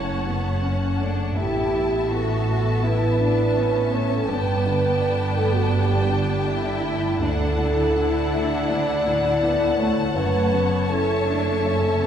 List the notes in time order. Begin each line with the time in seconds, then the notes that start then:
Already playing: F#1 F#2 C#3 A3 C#4 E4 C#5 F#5 A5
0.26 C#3 B3
0.63 C#4
0.99 A3 D4
1.36 A1 A2 B3 E4 G4 E5 A5
1.74 E3
2.10 B3 F#4 A4
2.47 A3
2.83 A2 E4 B4
3.21 E3 D4
3.57 B3 C#4
3.93 A3 C#5
4.11 A4
4.29 G1 G2 B3 D4 B4 G5
4.66 D3
5.02 D4
5.36 A3 A4
5.54 F#4
5.71 G2 G4
6.09 D3
6.47 D4 E4
6.85 A3
7.21 D2 D4 E4 A4 F#5 A5
7.59 A2
7.96 D4 E4
8.33 A3 E5
8.69 D2 D5
9.06 A2
9.42 B3 E4
9.78 A3 C#5
10.15 F#1 F#2 A3 B4 C#5
10.52 C#3 B3
10.88 C#4 E4 A4 E5
11.28 A3 D4
11.65 F#2 C#4
12.03 C#3 B3